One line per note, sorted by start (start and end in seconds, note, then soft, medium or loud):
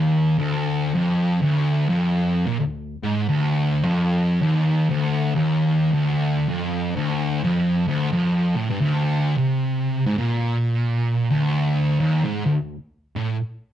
0.00 0.38 D#2 loud
0.38 0.94 D2 loud
0.94 1.41 F2 loud
1.42 1.88 D2 loud
1.89 2.45 F2 loud
2.46 2.58 A#2 loud
2.60 2.94 D2 medium
3.03 3.27 G#2 loud
3.29 3.84 D2 loud
3.85 4.40 F2 medium
4.41 4.87 D#2 loud
4.89 5.35 D2 loud
5.35 5.91 D#2 loud
5.92 6.47 D2 loud
6.49 6.94 F2 loud
6.96 7.42 D2 loud
7.43 7.86 F2 loud
7.88 8.11 D2 loud
8.12 8.54 F2 loud
8.56 8.67 A2 loud
8.70 8.80 G2 loud
8.80 9.36 D2 loud
9.37 10.05 C3 loud
10.06 10.18 G#2 loud
10.18 11.29 A#2 loud
11.30 11.98 D2 loud
11.99 12.23 D#2 loud
12.24 12.45 G#2 loud
12.46 12.75 D2 medium
13.16 13.36 A2 loud